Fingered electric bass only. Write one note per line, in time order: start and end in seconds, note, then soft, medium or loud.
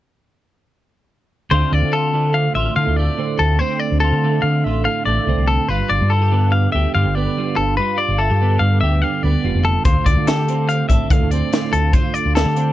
1.51 1.60 D2 medium
1.72 1.81 D2 loud
1.82 2.47 D3 medium
2.55 2.64 A1 medium
2.77 2.86 D3 medium
2.87 3.05 D2 medium
3.40 3.58 D2 medium
3.92 4.10 D2 medium
4.12 4.40 D3 medium
4.43 4.62 D3 medium
4.66 4.84 A1 medium
5.07 5.16 A1 medium
5.27 5.36 C2 medium
5.37 5.56 C2 medium
5.68 5.78 G1 medium
5.91 5.99 G1 medium
6.01 6.65 G2 medium
6.74 6.83 D2 medium
6.95 7.04 G2 medium
7.06 7.24 G1 medium
7.58 7.76 G1 medium
8.09 8.27 G1 medium
8.31 8.58 G2 medium
8.61 8.79 G2 medium
8.82 9.00 D2 medium
9.24 9.33 D2 medium
9.44 9.53 F1 medium
9.55 9.73 F1 medium
9.85 9.95 D2 medium
10.06 10.16 D2 medium
10.16 10.81 D3 medium
10.89 10.99 A1 medium
11.11 11.20 D3 medium
11.21 11.39 D2 medium
11.73 11.92 D2 medium
12.26 12.44 D2 medium
12.45 12.73 D3 medium